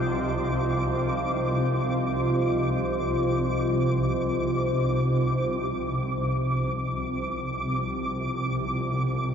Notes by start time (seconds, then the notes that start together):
Already playing: C2 C3 F4 C5 D#5 D6
5.71 C2 C3 D6